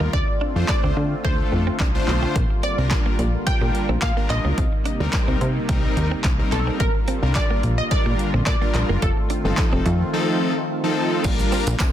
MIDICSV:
0, 0, Header, 1, 8, 480
1, 0, Start_track
1, 0, Key_signature, -2, "major"
1, 0, Tempo, 555556
1, 116, Time_signature, 4, 2, 24, 8
1, 10301, End_track
2, 0, Start_track
2, 0, Title_t, "Synth pluck"
2, 0, Program_c, 0, 84
2, 0, Note_on_c, 0, 75, 103
2, 115, Note_on_c, 0, 74, 106
2, 130, Note_off_c, 0, 75, 0
2, 585, Note_off_c, 0, 74, 0
2, 595, Note_on_c, 0, 74, 103
2, 1042, Note_off_c, 0, 74, 0
2, 1076, Note_on_c, 0, 72, 94
2, 1761, Note_off_c, 0, 72, 0
2, 2277, Note_on_c, 0, 74, 97
2, 2995, Note_on_c, 0, 79, 117
2, 3018, Note_off_c, 0, 74, 0
2, 3442, Note_off_c, 0, 79, 0
2, 3476, Note_on_c, 0, 77, 99
2, 3584, Note_off_c, 0, 77, 0
2, 3716, Note_on_c, 0, 75, 89
2, 4641, Note_off_c, 0, 75, 0
2, 5635, Note_on_c, 0, 69, 88
2, 5874, Note_on_c, 0, 70, 92
2, 5883, Note_off_c, 0, 69, 0
2, 6321, Note_off_c, 0, 70, 0
2, 6355, Note_on_c, 0, 74, 110
2, 6722, Note_on_c, 0, 75, 101
2, 6733, Note_off_c, 0, 74, 0
2, 6773, Note_off_c, 0, 75, 0
2, 6835, Note_on_c, 0, 74, 114
2, 7305, Note_off_c, 0, 74, 0
2, 7316, Note_on_c, 0, 74, 101
2, 7797, Note_on_c, 0, 69, 87
2, 7810, Note_off_c, 0, 74, 0
2, 9202, Note_off_c, 0, 69, 0
2, 10301, End_track
3, 0, Start_track
3, 0, Title_t, "Analog polysynth"
3, 0, Program_c, 1, 90
3, 0, Note_on_c, 1, 50, 75
3, 0, Note_on_c, 1, 55, 80
3, 0, Note_on_c, 1, 65, 75
3, 0, Note_on_c, 1, 70, 92
3, 115, Note_off_c, 1, 50, 0
3, 115, Note_off_c, 1, 55, 0
3, 116, Note_off_c, 1, 65, 0
3, 117, Note_off_c, 1, 70, 0
3, 481, Note_on_c, 1, 57, 80
3, 483, Note_on_c, 1, 62, 73
3, 484, Note_on_c, 1, 65, 75
3, 486, Note_on_c, 1, 72, 86
3, 809, Note_off_c, 1, 57, 0
3, 810, Note_off_c, 1, 62, 0
3, 811, Note_off_c, 1, 65, 0
3, 811, Note_off_c, 1, 72, 0
3, 1074, Note_on_c, 1, 57, 84
3, 1075, Note_on_c, 1, 62, 75
3, 1077, Note_on_c, 1, 65, 75
3, 1078, Note_on_c, 1, 69, 92
3, 1413, Note_off_c, 1, 57, 0
3, 1413, Note_off_c, 1, 62, 0
3, 1414, Note_off_c, 1, 65, 0
3, 1415, Note_off_c, 1, 69, 0
3, 1680, Note_on_c, 1, 57, 95
3, 1682, Note_on_c, 1, 62, 91
3, 1683, Note_on_c, 1, 65, 91
3, 1685, Note_on_c, 1, 72, 110
3, 2034, Note_off_c, 1, 57, 0
3, 2035, Note_off_c, 1, 62, 0
3, 2036, Note_off_c, 1, 65, 0
3, 2037, Note_off_c, 1, 72, 0
3, 2401, Note_on_c, 1, 55, 83
3, 2402, Note_on_c, 1, 62, 74
3, 2403, Note_on_c, 1, 65, 72
3, 2405, Note_on_c, 1, 70, 93
3, 2729, Note_off_c, 1, 55, 0
3, 2729, Note_off_c, 1, 62, 0
3, 2730, Note_off_c, 1, 65, 0
3, 2731, Note_off_c, 1, 70, 0
3, 2993, Note_on_c, 1, 55, 84
3, 2995, Note_on_c, 1, 62, 77
3, 2996, Note_on_c, 1, 65, 82
3, 2997, Note_on_c, 1, 70, 91
3, 3333, Note_off_c, 1, 55, 0
3, 3333, Note_off_c, 1, 62, 0
3, 3334, Note_off_c, 1, 65, 0
3, 3335, Note_off_c, 1, 70, 0
3, 3600, Note_on_c, 1, 55, 82
3, 3602, Note_on_c, 1, 62, 74
3, 3603, Note_on_c, 1, 65, 71
3, 3604, Note_on_c, 1, 70, 90
3, 3955, Note_off_c, 1, 55, 0
3, 3955, Note_off_c, 1, 62, 0
3, 3956, Note_off_c, 1, 65, 0
3, 3956, Note_off_c, 1, 70, 0
3, 4321, Note_on_c, 1, 55, 99
3, 4323, Note_on_c, 1, 60, 91
3, 4324, Note_on_c, 1, 63, 91
3, 4326, Note_on_c, 1, 70, 106
3, 4649, Note_off_c, 1, 55, 0
3, 4650, Note_off_c, 1, 60, 0
3, 4651, Note_off_c, 1, 63, 0
3, 4651, Note_off_c, 1, 70, 0
3, 4913, Note_on_c, 1, 55, 102
3, 4914, Note_on_c, 1, 60, 92
3, 4915, Note_on_c, 1, 63, 99
3, 4917, Note_on_c, 1, 70, 109
3, 5253, Note_off_c, 1, 55, 0
3, 5253, Note_off_c, 1, 60, 0
3, 5254, Note_off_c, 1, 63, 0
3, 5254, Note_off_c, 1, 70, 0
3, 5520, Note_on_c, 1, 55, 81
3, 5521, Note_on_c, 1, 60, 75
3, 5523, Note_on_c, 1, 63, 75
3, 5524, Note_on_c, 1, 70, 90
3, 5874, Note_off_c, 1, 55, 0
3, 5875, Note_off_c, 1, 60, 0
3, 5876, Note_off_c, 1, 63, 0
3, 5876, Note_off_c, 1, 70, 0
3, 6240, Note_on_c, 1, 55, 80
3, 6242, Note_on_c, 1, 62, 76
3, 6243, Note_on_c, 1, 65, 74
3, 6245, Note_on_c, 1, 70, 89
3, 6569, Note_off_c, 1, 55, 0
3, 6570, Note_off_c, 1, 62, 0
3, 6570, Note_off_c, 1, 65, 0
3, 6571, Note_off_c, 1, 70, 0
3, 6833, Note_on_c, 1, 55, 86
3, 6835, Note_on_c, 1, 62, 82
3, 6836, Note_on_c, 1, 65, 80
3, 6838, Note_on_c, 1, 70, 94
3, 7173, Note_off_c, 1, 55, 0
3, 7174, Note_off_c, 1, 62, 0
3, 7174, Note_off_c, 1, 65, 0
3, 7175, Note_off_c, 1, 70, 0
3, 7442, Note_on_c, 1, 55, 81
3, 7444, Note_on_c, 1, 62, 75
3, 7445, Note_on_c, 1, 65, 72
3, 7446, Note_on_c, 1, 70, 92
3, 7795, Note_off_c, 1, 55, 0
3, 7796, Note_off_c, 1, 62, 0
3, 7797, Note_off_c, 1, 65, 0
3, 7798, Note_off_c, 1, 70, 0
3, 8161, Note_on_c, 1, 53, 80
3, 8162, Note_on_c, 1, 60, 72
3, 8164, Note_on_c, 1, 63, 74
3, 8165, Note_on_c, 1, 69, 93
3, 8489, Note_off_c, 1, 53, 0
3, 8490, Note_off_c, 1, 60, 0
3, 8491, Note_off_c, 1, 63, 0
3, 8491, Note_off_c, 1, 69, 0
3, 8754, Note_on_c, 1, 53, 105
3, 8756, Note_on_c, 1, 60, 95
3, 8757, Note_on_c, 1, 63, 97
3, 8758, Note_on_c, 1, 69, 115
3, 9093, Note_off_c, 1, 53, 0
3, 9094, Note_off_c, 1, 60, 0
3, 9095, Note_off_c, 1, 63, 0
3, 9095, Note_off_c, 1, 69, 0
3, 9361, Note_on_c, 1, 53, 99
3, 9362, Note_on_c, 1, 60, 90
3, 9364, Note_on_c, 1, 63, 86
3, 9365, Note_on_c, 1, 69, 109
3, 9714, Note_on_c, 1, 55, 100
3, 9715, Note_off_c, 1, 53, 0
3, 9715, Note_off_c, 1, 60, 0
3, 9715, Note_on_c, 1, 62, 93
3, 9716, Note_off_c, 1, 63, 0
3, 9717, Note_off_c, 1, 69, 0
3, 10053, Note_off_c, 1, 55, 0
3, 10054, Note_off_c, 1, 62, 0
3, 10301, End_track
4, 0, Start_track
4, 0, Title_t, "Clean electric guitar"
4, 0, Program_c, 2, 27
4, 2, Note_on_c, 2, 58, 80
4, 77, Note_off_c, 2, 58, 0
4, 115, Note_on_c, 2, 62, 86
4, 200, Note_off_c, 2, 62, 0
4, 356, Note_on_c, 2, 62, 82
4, 440, Note_off_c, 2, 62, 0
4, 723, Note_on_c, 2, 60, 74
4, 798, Note_off_c, 2, 60, 0
4, 837, Note_on_c, 2, 57, 76
4, 921, Note_off_c, 2, 57, 0
4, 1077, Note_on_c, 2, 57, 90
4, 1161, Note_off_c, 2, 57, 0
4, 1443, Note_on_c, 2, 60, 74
4, 1518, Note_off_c, 2, 60, 0
4, 1555, Note_on_c, 2, 62, 83
4, 1640, Note_off_c, 2, 62, 0
4, 1923, Note_on_c, 2, 60, 70
4, 1998, Note_off_c, 2, 60, 0
4, 2036, Note_on_c, 2, 58, 83
4, 2120, Note_off_c, 2, 58, 0
4, 2275, Note_on_c, 2, 60, 79
4, 2359, Note_off_c, 2, 60, 0
4, 2643, Note_on_c, 2, 58, 80
4, 2718, Note_off_c, 2, 58, 0
4, 2755, Note_on_c, 2, 55, 75
4, 2840, Note_off_c, 2, 55, 0
4, 3122, Note_on_c, 2, 55, 79
4, 3197, Note_off_c, 2, 55, 0
4, 3362, Note_on_c, 2, 60, 80
4, 3437, Note_off_c, 2, 60, 0
4, 3602, Note_on_c, 2, 58, 81
4, 3677, Note_off_c, 2, 58, 0
4, 3842, Note_on_c, 2, 58, 80
4, 3917, Note_off_c, 2, 58, 0
4, 3955, Note_on_c, 2, 60, 88
4, 4039, Note_off_c, 2, 60, 0
4, 4195, Note_on_c, 2, 62, 82
4, 4279, Note_off_c, 2, 62, 0
4, 4562, Note_on_c, 2, 60, 77
4, 4637, Note_off_c, 2, 60, 0
4, 4675, Note_on_c, 2, 58, 74
4, 4760, Note_off_c, 2, 58, 0
4, 4915, Note_on_c, 2, 58, 85
4, 5000, Note_off_c, 2, 58, 0
4, 5283, Note_on_c, 2, 60, 75
4, 5358, Note_off_c, 2, 60, 0
4, 5397, Note_on_c, 2, 62, 83
4, 5481, Note_off_c, 2, 62, 0
4, 5764, Note_on_c, 2, 60, 73
4, 5839, Note_off_c, 2, 60, 0
4, 5877, Note_on_c, 2, 55, 85
4, 5961, Note_off_c, 2, 55, 0
4, 6117, Note_on_c, 2, 60, 80
4, 6201, Note_off_c, 2, 60, 0
4, 6484, Note_on_c, 2, 58, 81
4, 6559, Note_off_c, 2, 58, 0
4, 6597, Note_on_c, 2, 55, 76
4, 6681, Note_off_c, 2, 55, 0
4, 6964, Note_on_c, 2, 55, 83
4, 7038, Note_off_c, 2, 55, 0
4, 7205, Note_on_c, 2, 60, 86
4, 7279, Note_off_c, 2, 60, 0
4, 7444, Note_on_c, 2, 58, 80
4, 7518, Note_off_c, 2, 58, 0
4, 7685, Note_on_c, 2, 58, 83
4, 7759, Note_off_c, 2, 58, 0
4, 7797, Note_on_c, 2, 65, 88
4, 7881, Note_off_c, 2, 65, 0
4, 8036, Note_on_c, 2, 62, 84
4, 8121, Note_off_c, 2, 62, 0
4, 8404, Note_on_c, 2, 60, 78
4, 8478, Note_off_c, 2, 60, 0
4, 8516, Note_on_c, 2, 57, 78
4, 8600, Note_off_c, 2, 57, 0
4, 9716, Note_on_c, 2, 58, 90
4, 9801, Note_off_c, 2, 58, 0
4, 9955, Note_on_c, 2, 60, 84
4, 10040, Note_off_c, 2, 60, 0
4, 10301, End_track
5, 0, Start_track
5, 0, Title_t, "Supersaw synth"
5, 0, Program_c, 3, 81
5, 0, Note_on_c, 3, 50, 83
5, 0, Note_on_c, 3, 65, 90
5, 96, Note_off_c, 3, 50, 0
5, 114, Note_on_c, 3, 60, 78
5, 115, Note_on_c, 3, 50, 84
5, 115, Note_on_c, 3, 57, 79
5, 2016, Note_off_c, 3, 57, 0
5, 2016, Note_off_c, 3, 60, 0
5, 2034, Note_on_c, 3, 55, 77
5, 2034, Note_on_c, 3, 58, 75
5, 3921, Note_off_c, 3, 50, 0
5, 3921, Note_off_c, 3, 65, 0
5, 5876, Note_on_c, 3, 50, 87
5, 5876, Note_on_c, 3, 65, 95
5, 7761, Note_off_c, 3, 55, 0
5, 7761, Note_off_c, 3, 58, 0
5, 7777, Note_off_c, 3, 50, 0
5, 7796, Note_on_c, 3, 51, 83
5, 7796, Note_on_c, 3, 57, 78
5, 7796, Note_on_c, 3, 60, 75
5, 9681, Note_off_c, 3, 65, 0
5, 9696, Note_off_c, 3, 60, 0
5, 9697, Note_off_c, 3, 51, 0
5, 9697, Note_off_c, 3, 57, 0
5, 10301, End_track
6, 0, Start_track
6, 0, Title_t, "Analog synth bass"
6, 0, Program_c, 4, 38
6, 2, Note_on_c, 4, 39, 85
6, 76, Note_off_c, 4, 39, 0
6, 115, Note_on_c, 4, 38, 100
6, 199, Note_off_c, 4, 38, 0
6, 482, Note_on_c, 4, 41, 91
6, 556, Note_off_c, 4, 41, 0
6, 722, Note_on_c, 4, 38, 93
6, 796, Note_off_c, 4, 38, 0
6, 835, Note_on_c, 4, 50, 98
6, 992, Note_off_c, 4, 50, 0
6, 1076, Note_on_c, 4, 38, 106
6, 1233, Note_off_c, 4, 38, 0
6, 1315, Note_on_c, 4, 41, 86
6, 1472, Note_off_c, 4, 41, 0
6, 1555, Note_on_c, 4, 36, 89
6, 1712, Note_off_c, 4, 36, 0
6, 1796, Note_on_c, 4, 35, 86
6, 1953, Note_off_c, 4, 35, 0
6, 2036, Note_on_c, 4, 34, 97
6, 2119, Note_off_c, 4, 34, 0
6, 2402, Note_on_c, 4, 36, 91
6, 2559, Note_off_c, 4, 36, 0
6, 2756, Note_on_c, 4, 34, 94
6, 2913, Note_off_c, 4, 34, 0
6, 2996, Note_on_c, 4, 46, 51
6, 3047, Note_off_c, 4, 46, 0
6, 3122, Note_on_c, 4, 46, 95
6, 3196, Note_off_c, 4, 46, 0
6, 3362, Note_on_c, 4, 34, 84
6, 3436, Note_off_c, 4, 34, 0
6, 3474, Note_on_c, 4, 46, 105
6, 3558, Note_off_c, 4, 46, 0
6, 3714, Note_on_c, 4, 34, 93
6, 3798, Note_off_c, 4, 34, 0
6, 3841, Note_on_c, 4, 37, 97
6, 3915, Note_off_c, 4, 37, 0
6, 3956, Note_on_c, 4, 36, 100
6, 4039, Note_off_c, 4, 36, 0
6, 4322, Note_on_c, 4, 38, 89
6, 4396, Note_off_c, 4, 38, 0
6, 4561, Note_on_c, 4, 36, 100
6, 4636, Note_off_c, 4, 36, 0
6, 4675, Note_on_c, 4, 48, 98
6, 4832, Note_off_c, 4, 48, 0
6, 4917, Note_on_c, 4, 36, 107
6, 5073, Note_off_c, 4, 36, 0
6, 5155, Note_on_c, 4, 39, 91
6, 5312, Note_off_c, 4, 39, 0
6, 5394, Note_on_c, 4, 36, 98
6, 5552, Note_off_c, 4, 36, 0
6, 5636, Note_on_c, 4, 35, 95
6, 5793, Note_off_c, 4, 35, 0
6, 5876, Note_on_c, 4, 34, 109
6, 5959, Note_off_c, 4, 34, 0
6, 6243, Note_on_c, 4, 36, 91
6, 6400, Note_off_c, 4, 36, 0
6, 6595, Note_on_c, 4, 34, 97
6, 6753, Note_off_c, 4, 34, 0
6, 6837, Note_on_c, 4, 46, 49
6, 6887, Note_off_c, 4, 46, 0
6, 6962, Note_on_c, 4, 46, 95
6, 7036, Note_off_c, 4, 46, 0
6, 7203, Note_on_c, 4, 34, 87
6, 7277, Note_off_c, 4, 34, 0
6, 7315, Note_on_c, 4, 46, 95
6, 7398, Note_off_c, 4, 46, 0
6, 7556, Note_on_c, 4, 34, 88
6, 7639, Note_off_c, 4, 34, 0
6, 7683, Note_on_c, 4, 30, 90
6, 7757, Note_off_c, 4, 30, 0
6, 7796, Note_on_c, 4, 29, 111
6, 7879, Note_off_c, 4, 29, 0
6, 8163, Note_on_c, 4, 31, 97
6, 8237, Note_off_c, 4, 31, 0
6, 8404, Note_on_c, 4, 29, 93
6, 8477, Note_off_c, 4, 29, 0
6, 8517, Note_on_c, 4, 41, 104
6, 8674, Note_off_c, 4, 41, 0
6, 9716, Note_on_c, 4, 34, 110
6, 9873, Note_off_c, 4, 34, 0
6, 10083, Note_on_c, 4, 34, 106
6, 10157, Note_off_c, 4, 34, 0
6, 10196, Note_on_c, 4, 36, 97
6, 10301, Note_off_c, 4, 36, 0
6, 10301, End_track
7, 0, Start_track
7, 0, Title_t, "Muted clean electric guitar strokes"
7, 243, Note_on_c, 9, 29, 44
7, 329, Note_off_c, 9, 29, 0
7, 597, Note_on_c, 9, 29, 44
7, 683, Note_off_c, 9, 29, 0
7, 1316, Note_on_c, 9, 29, 46
7, 1403, Note_off_c, 9, 29, 0
7, 1682, Note_on_c, 9, 29, 45
7, 1769, Note_off_c, 9, 29, 0
7, 2163, Note_on_c, 9, 29, 43
7, 2249, Note_off_c, 9, 29, 0
7, 2515, Note_on_c, 9, 29, 43
7, 2602, Note_off_c, 9, 29, 0
7, 3235, Note_on_c, 9, 29, 47
7, 3321, Note_off_c, 9, 29, 0
7, 3715, Note_on_c, 9, 29, 43
7, 3802, Note_off_c, 9, 29, 0
7, 4083, Note_on_c, 9, 29, 43
7, 4169, Note_off_c, 9, 29, 0
7, 4435, Note_on_c, 9, 29, 44
7, 4521, Note_off_c, 9, 29, 0
7, 5156, Note_on_c, 9, 29, 47
7, 5243, Note_off_c, 9, 29, 0
7, 5524, Note_on_c, 9, 29, 46
7, 5611, Note_off_c, 9, 29, 0
7, 6004, Note_on_c, 9, 29, 42
7, 6090, Note_off_c, 9, 29, 0
7, 6356, Note_on_c, 9, 29, 45
7, 6443, Note_off_c, 9, 29, 0
7, 7077, Note_on_c, 9, 29, 47
7, 7164, Note_off_c, 9, 29, 0
7, 7557, Note_on_c, 9, 29, 43
7, 7643, Note_off_c, 9, 29, 0
7, 7925, Note_on_c, 9, 29, 42
7, 8012, Note_off_c, 9, 29, 0
7, 8276, Note_on_c, 9, 29, 44
7, 8362, Note_off_c, 9, 29, 0
7, 9843, Note_on_c, 9, 29, 46
7, 9929, Note_off_c, 9, 29, 0
7, 10195, Note_on_c, 9, 29, 45
7, 10282, Note_off_c, 9, 29, 0
7, 10301, End_track
8, 0, Start_track
8, 0, Title_t, "Drums"
8, 116, Note_on_c, 9, 36, 107
8, 202, Note_off_c, 9, 36, 0
8, 590, Note_on_c, 9, 38, 89
8, 593, Note_on_c, 9, 39, 109
8, 596, Note_on_c, 9, 36, 119
8, 676, Note_off_c, 9, 38, 0
8, 680, Note_off_c, 9, 39, 0
8, 683, Note_off_c, 9, 36, 0
8, 1076, Note_on_c, 9, 36, 117
8, 1163, Note_off_c, 9, 36, 0
8, 1551, Note_on_c, 9, 38, 87
8, 1554, Note_on_c, 9, 39, 110
8, 1555, Note_on_c, 9, 36, 112
8, 1637, Note_off_c, 9, 38, 0
8, 1640, Note_off_c, 9, 39, 0
8, 1641, Note_off_c, 9, 36, 0
8, 1799, Note_on_c, 9, 39, 72
8, 1885, Note_off_c, 9, 39, 0
8, 2036, Note_on_c, 9, 36, 106
8, 2036, Note_on_c, 9, 42, 69
8, 2122, Note_off_c, 9, 36, 0
8, 2122, Note_off_c, 9, 42, 0
8, 2274, Note_on_c, 9, 42, 51
8, 2361, Note_off_c, 9, 42, 0
8, 2510, Note_on_c, 9, 38, 93
8, 2514, Note_on_c, 9, 39, 109
8, 2514, Note_on_c, 9, 42, 69
8, 2517, Note_on_c, 9, 36, 117
8, 2597, Note_off_c, 9, 38, 0
8, 2600, Note_off_c, 9, 39, 0
8, 2601, Note_off_c, 9, 42, 0
8, 2603, Note_off_c, 9, 36, 0
8, 2756, Note_on_c, 9, 42, 45
8, 2842, Note_off_c, 9, 42, 0
8, 2995, Note_on_c, 9, 42, 70
8, 2997, Note_on_c, 9, 36, 111
8, 3081, Note_off_c, 9, 42, 0
8, 3083, Note_off_c, 9, 36, 0
8, 3238, Note_on_c, 9, 42, 51
8, 3324, Note_off_c, 9, 42, 0
8, 3470, Note_on_c, 9, 38, 89
8, 3474, Note_on_c, 9, 36, 115
8, 3474, Note_on_c, 9, 39, 112
8, 3476, Note_on_c, 9, 42, 88
8, 3557, Note_off_c, 9, 38, 0
8, 3560, Note_off_c, 9, 39, 0
8, 3561, Note_off_c, 9, 36, 0
8, 3562, Note_off_c, 9, 42, 0
8, 3714, Note_on_c, 9, 42, 56
8, 3718, Note_on_c, 9, 39, 75
8, 3801, Note_off_c, 9, 42, 0
8, 3805, Note_off_c, 9, 39, 0
8, 3955, Note_on_c, 9, 42, 69
8, 3956, Note_on_c, 9, 36, 109
8, 4042, Note_off_c, 9, 36, 0
8, 4042, Note_off_c, 9, 42, 0
8, 4194, Note_on_c, 9, 42, 50
8, 4281, Note_off_c, 9, 42, 0
8, 4430, Note_on_c, 9, 38, 92
8, 4434, Note_on_c, 9, 39, 116
8, 4434, Note_on_c, 9, 42, 66
8, 4437, Note_on_c, 9, 36, 117
8, 4517, Note_off_c, 9, 38, 0
8, 4520, Note_off_c, 9, 39, 0
8, 4520, Note_off_c, 9, 42, 0
8, 4523, Note_off_c, 9, 36, 0
8, 4675, Note_on_c, 9, 42, 45
8, 4762, Note_off_c, 9, 42, 0
8, 4915, Note_on_c, 9, 42, 70
8, 4917, Note_on_c, 9, 36, 123
8, 5001, Note_off_c, 9, 42, 0
8, 5003, Note_off_c, 9, 36, 0
8, 5158, Note_on_c, 9, 42, 52
8, 5244, Note_off_c, 9, 42, 0
8, 5390, Note_on_c, 9, 38, 87
8, 5393, Note_on_c, 9, 39, 114
8, 5395, Note_on_c, 9, 36, 118
8, 5395, Note_on_c, 9, 42, 87
8, 5477, Note_off_c, 9, 38, 0
8, 5480, Note_off_c, 9, 39, 0
8, 5481, Note_off_c, 9, 36, 0
8, 5482, Note_off_c, 9, 42, 0
8, 5634, Note_on_c, 9, 42, 54
8, 5638, Note_on_c, 9, 39, 71
8, 5720, Note_off_c, 9, 42, 0
8, 5724, Note_off_c, 9, 39, 0
8, 5875, Note_on_c, 9, 42, 69
8, 5876, Note_on_c, 9, 36, 106
8, 5962, Note_off_c, 9, 36, 0
8, 5962, Note_off_c, 9, 42, 0
8, 6114, Note_on_c, 9, 42, 51
8, 6200, Note_off_c, 9, 42, 0
8, 6350, Note_on_c, 9, 38, 89
8, 6353, Note_on_c, 9, 39, 116
8, 6354, Note_on_c, 9, 42, 69
8, 6357, Note_on_c, 9, 36, 114
8, 6436, Note_off_c, 9, 38, 0
8, 6440, Note_off_c, 9, 39, 0
8, 6440, Note_off_c, 9, 42, 0
8, 6443, Note_off_c, 9, 36, 0
8, 6595, Note_on_c, 9, 42, 43
8, 6682, Note_off_c, 9, 42, 0
8, 6835, Note_on_c, 9, 42, 74
8, 6837, Note_on_c, 9, 36, 120
8, 6921, Note_off_c, 9, 42, 0
8, 6923, Note_off_c, 9, 36, 0
8, 7078, Note_on_c, 9, 42, 52
8, 7165, Note_off_c, 9, 42, 0
8, 7311, Note_on_c, 9, 38, 88
8, 7314, Note_on_c, 9, 39, 108
8, 7315, Note_on_c, 9, 36, 118
8, 7316, Note_on_c, 9, 42, 91
8, 7397, Note_off_c, 9, 38, 0
8, 7400, Note_off_c, 9, 39, 0
8, 7401, Note_off_c, 9, 36, 0
8, 7402, Note_off_c, 9, 42, 0
8, 7554, Note_on_c, 9, 42, 53
8, 7558, Note_on_c, 9, 39, 73
8, 7641, Note_off_c, 9, 42, 0
8, 7645, Note_off_c, 9, 39, 0
8, 7796, Note_on_c, 9, 36, 110
8, 7796, Note_on_c, 9, 42, 68
8, 7882, Note_off_c, 9, 42, 0
8, 7883, Note_off_c, 9, 36, 0
8, 8034, Note_on_c, 9, 42, 52
8, 8120, Note_off_c, 9, 42, 0
8, 8270, Note_on_c, 9, 38, 90
8, 8273, Note_on_c, 9, 39, 115
8, 8274, Note_on_c, 9, 42, 66
8, 8277, Note_on_c, 9, 36, 118
8, 8357, Note_off_c, 9, 38, 0
8, 8360, Note_off_c, 9, 39, 0
8, 8360, Note_off_c, 9, 42, 0
8, 8363, Note_off_c, 9, 36, 0
8, 8516, Note_on_c, 9, 42, 45
8, 8602, Note_off_c, 9, 42, 0
8, 9715, Note_on_c, 9, 82, 71
8, 9716, Note_on_c, 9, 36, 111
8, 9716, Note_on_c, 9, 49, 106
8, 9802, Note_off_c, 9, 36, 0
8, 9802, Note_off_c, 9, 49, 0
8, 9802, Note_off_c, 9, 82, 0
8, 9843, Note_on_c, 9, 42, 55
8, 9843, Note_on_c, 9, 82, 55
8, 9929, Note_off_c, 9, 42, 0
8, 9929, Note_off_c, 9, 82, 0
8, 9954, Note_on_c, 9, 46, 73
8, 9954, Note_on_c, 9, 82, 50
8, 10040, Note_off_c, 9, 46, 0
8, 10040, Note_off_c, 9, 82, 0
8, 10082, Note_on_c, 9, 42, 85
8, 10082, Note_on_c, 9, 82, 81
8, 10169, Note_off_c, 9, 42, 0
8, 10169, Note_off_c, 9, 82, 0
8, 10190, Note_on_c, 9, 38, 96
8, 10194, Note_on_c, 9, 39, 118
8, 10194, Note_on_c, 9, 82, 68
8, 10195, Note_on_c, 9, 54, 87
8, 10197, Note_on_c, 9, 36, 124
8, 10277, Note_off_c, 9, 38, 0
8, 10280, Note_off_c, 9, 39, 0
8, 10280, Note_off_c, 9, 82, 0
8, 10282, Note_off_c, 9, 54, 0
8, 10283, Note_off_c, 9, 36, 0
8, 10301, End_track
0, 0, End_of_file